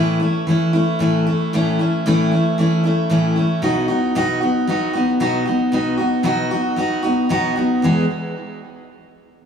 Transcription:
0.00 0.20 A2 medium
0.00 0.20 E3 medium
0.00 0.21 A3 loud
0.00 0.20 C#4 medium
0.00 0.19 E4 medium
0.20 0.47 A3 medium
0.20 0.47 C#4 medium
0.20 0.46 E4 medium
0.47 0.73 E3 medium
0.47 0.74 A3 medium
0.47 0.74 C#4 medium
0.47 0.72 E4 medium
0.73 0.99 A3 medium
0.73 1.00 C#4 medium
0.73 1.00 E4 medium
0.99 1.26 A2 medium
0.99 1.26 E3 medium
0.99 1.26 A3 medium
0.99 1.27 C#4 medium
0.99 1.25 E4 medium
1.27 1.53 A3 medium
1.27 1.54 C#4 medium
1.27 1.53 E4 medium
1.53 1.79 A2 medium
1.53 1.79 E3 medium
1.53 1.80 A3 medium
1.53 1.80 C#4 medium
1.53 1.78 E4 medium
1.79 2.06 A3 soft
1.79 2.06 C#4 medium
1.79 2.05 E4 medium
2.06 2.32 A2 medium
2.06 2.32 E3 medium
2.06 2.32 A3 medium
2.06 2.32 C#4 loud
2.06 2.30 E4 loud
2.31 2.58 A3 soft
2.31 2.58 C#4 soft
2.31 2.58 E4 medium
2.58 2.84 E3 medium
2.58 2.85 A3 medium
2.58 2.84 C#4 medium
2.58 2.82 E4 medium
2.84 3.10 A3 medium
2.84 3.10 C#4 medium
2.84 3.10 E4 medium
3.10 3.36 A2 medium
3.10 3.37 E3 medium
3.10 3.37 A3 medium
3.10 3.36 C#4 medium
3.10 3.35 E4 medium
3.36 3.62 A3 soft
3.36 3.63 C#4 medium
3.36 3.62 E4 medium
3.62 3.89 B2 medium
3.62 3.89 F#3 medium
3.62 3.89 B3 medium
3.62 3.88 D#4 medium
3.62 3.87 F#4 medium
3.88 4.15 B3 medium
3.88 4.15 D#4 medium
3.88 4.15 F#4 medium
4.15 4.42 B2 medium
4.15 4.42 F#3 medium
4.15 4.42 B3 medium
4.15 4.41 D#4 medium
4.15 4.40 F#4 loud
4.41 4.67 B3 soft
4.41 4.68 D#4 medium
4.41 4.67 F#4 medium
4.67 4.94 F#3 medium
4.67 4.95 B3 medium
4.67 4.94 D#4 medium
4.67 4.92 F#4 medium
4.93 5.19 B3 medium
4.93 5.20 D#4 soft
4.93 5.20 F#4 medium
5.20 5.46 B2 medium
5.20 5.47 F#3 medium
5.20 5.47 B3 medium
5.20 5.46 D#4 medium
5.20 5.44 F#4 medium
5.46 5.72 B3 soft
5.46 5.73 D#4 medium
5.46 5.72 F#4 medium
5.72 5.99 B2 medium
5.72 5.99 F#3 medium
5.72 5.99 B3 medium
5.72 5.98 D#4 medium
5.72 5.96 F#4 medium
5.97 6.23 B3 soft
5.97 6.24 D#4 medium
5.97 6.25 F#4 medium
6.23 6.50 B2 medium
6.23 6.51 F#3 medium
6.23 6.51 B3 medium
6.23 6.51 D#4 medium
6.23 6.50 F#4 loud
6.51 6.76 B3 soft
6.51 6.77 D#4 medium
6.51 6.78 F#4 medium
6.76 7.03 F#3 medium
6.76 7.04 B3 medium
6.76 7.03 D#4 medium
6.76 7.01 F#4 medium
7.03 7.29 B3 medium
7.03 7.30 D#4 medium
7.03 7.30 F#4 medium
7.29 7.56 B2 medium
7.29 7.57 F#3 medium
7.29 7.56 B3 medium
7.29 7.56 D#4 medium
7.29 7.55 F#4 medium
7.56 7.83 B3 soft
7.56 7.83 D#4 medium
7.56 7.82 F#4 medium
7.82 8.03 E2 medium
7.82 8.04 B2 medium
7.82 8.04 E3 medium
7.82 8.04 G#3 medium
7.82 8.05 B3 medium
7.82 8.05 G#4 medium

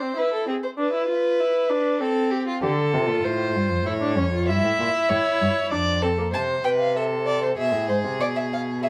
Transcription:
0.00 0.16 C4 medium
0.00 0.20 C5 medium
0.17 0.47 E4 medium
0.17 0.33 B4 medium
0.33 0.48 A4 medium
0.47 0.55 C4 medium
0.47 0.54 G#4 medium
0.63 0.69 C5 medium
0.78 0.92 D4 medium
0.78 1.99 B4 medium
0.93 1.08 E4 medium
1.09 1.42 F4 medium
1.40 1.71 E4 medium
1.70 2.02 D4 medium
2.00 2.62 C4 medium
2.00 2.32 A4 medium
2.31 2.46 G4 medium
2.47 2.62 F4 medium
2.62 2.95 D3 medium
2.62 2.70 G4 medium
2.62 3.26 A4 medium
2.93 3.10 C3 medium
2.93 3.85 F4 medium
3.09 3.23 A#2 medium
3.24 3.57 A2 medium
3.24 3.87 C5 medium
3.56 3.73 G2 medium
3.71 3.86 F2 medium
3.86 4.19 A2 medium
3.86 3.92 E4 medium
3.86 4.47 C#5 medium
4.02 4.17 D4 medium
4.17 4.50 F2 medium
4.17 4.23 C#4 medium
4.33 4.50 F4 medium
4.48 4.66 G2 loud
4.48 5.73 E4 loud
4.48 5.11 E5 medium
4.64 4.79 A2 medium
4.80 4.88 A#2 medium
5.09 5.18 A2 medium
5.09 5.70 C#5 medium
5.42 5.50 G2 medium
5.71 6.35 F2 medium
5.71 6.03 D4 medium
5.71 6.04 D5 medium
6.02 6.09 C4 medium
6.02 6.32 A4 medium
6.18 6.24 A#3 medium
6.32 6.64 C3 medium
6.32 6.66 C5 medium
6.32 6.42 A5 medium
6.64 7.56 C3 medium
6.64 6.98 B4 medium
6.64 6.70 G5 medium
6.80 6.95 F5 medium
6.96 7.57 A4 medium
6.96 7.04 E5 medium
7.26 7.42 D5 medium
7.43 7.49 C5 medium
7.58 7.74 B2 medium
7.58 8.80 G#4 medium
7.58 7.88 E5 medium
7.73 7.91 A2 medium
7.89 8.06 G#2 medium
7.89 7.97 C5 medium
8.04 8.21 C3 medium
8.20 8.89 B2 medium
8.20 8.27 D5 medium
8.36 8.42 E5 medium
8.53 8.61 F5 medium
8.82 8.89 G#4 medium
8.82 8.89 E5 medium

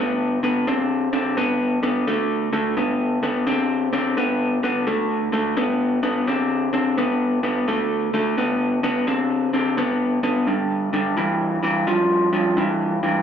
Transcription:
0.00 0.38 D3 medium
0.00 0.38 B3 medium
0.43 0.65 D3 medium
0.43 0.65 B3 medium
0.67 1.08 D3 medium
0.67 1.09 C4 medium
1.13 1.35 D3 medium
1.13 1.35 C4 medium
1.37 1.78 D3 medium
1.37 1.79 B3 medium
1.83 2.05 D3 medium
1.83 2.05 B3 medium
2.07 2.49 D3 medium
2.07 2.49 A3 medium
2.53 2.75 D3 medium
2.53 2.75 A3 medium
2.77 3.18 D3 medium
2.77 3.19 B3 medium
3.23 3.45 D3 medium
3.23 3.45 B3 medium
3.47 3.88 D3 medium
3.47 3.88 C4 loud
3.93 4.15 D3 medium
3.93 4.15 C4 medium
4.17 4.58 D3 medium
4.17 4.59 B3 medium
4.63 4.85 D3 medium
4.63 4.85 B3 medium
4.87 5.28 D3 medium
4.87 5.29 A3 medium
5.32 5.55 D3 medium
5.32 5.55 A3 medium
5.57 5.98 D3 medium
5.57 5.99 B3 medium
6.03 6.25 D3 medium
6.03 6.25 B3 medium
6.27 6.69 D3 medium
6.27 6.69 C4 medium
6.73 6.95 D3 medium
6.73 6.95 C4 medium
6.98 7.39 D3 medium
6.98 7.39 B3 medium
7.43 7.65 D3 medium
7.43 7.65 B3 medium
7.68 8.09 D3 medium
7.68 8.09 A3 medium
8.14 8.35 D3 medium
8.14 8.36 A3 medium
8.37 8.79 D3 medium
8.37 8.79 B3 medium
8.83 9.05 D3 medium
8.83 9.05 B3 medium
9.07 9.48 D3 medium
9.07 9.49 C4 medium
9.53 9.75 D3 medium
9.53 9.76 C4 medium
9.77 10.19 D3 medium
9.77 10.19 B3 medium
10.23 10.45 D3 medium
10.23 10.45 B3 medium
10.47 10.88 G2 medium
10.47 10.89 D3 medium
10.93 11.15 G2 medium
10.93 11.15 D3 medium
11.17 11.58 G2 medium
11.17 11.58 E3 medium
11.63 11.85 G2 medium
11.63 11.85 E3 medium
11.87 12.28 G2 medium
11.87 12.28 F3 loud
12.33 12.55 G2 medium
12.33 12.55 F3 medium
12.57 12.98 G2 medium
12.57 12.98 E3 medium
13.03 13.22 G2 medium
13.03 13.22 E3 medium

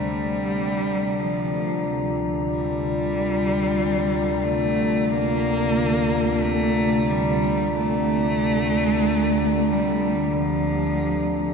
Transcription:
0.00 11.54 D2 medium
0.00 11.54 C3 medium
0.00 1.21 G3 loud
0.00 11.54 D4 medium
0.00 0.30 C5 medium
0.00 11.54 D5 medium
0.00 11.54 A#5 medium
1.19 2.17 F3 medium
1.40 10.51 F4 medium
2.49 4.46 G3 loud
4.45 5.13 A3 loud
5.11 6.42 A#3 loud
6.41 7.11 A3 loud
7.10 7.73 G3 loud
7.73 9.74 A3 loud
9.73 10.38 G3 medium
10.13 11.54 G4 medium
10.37 11.54 F3 medium

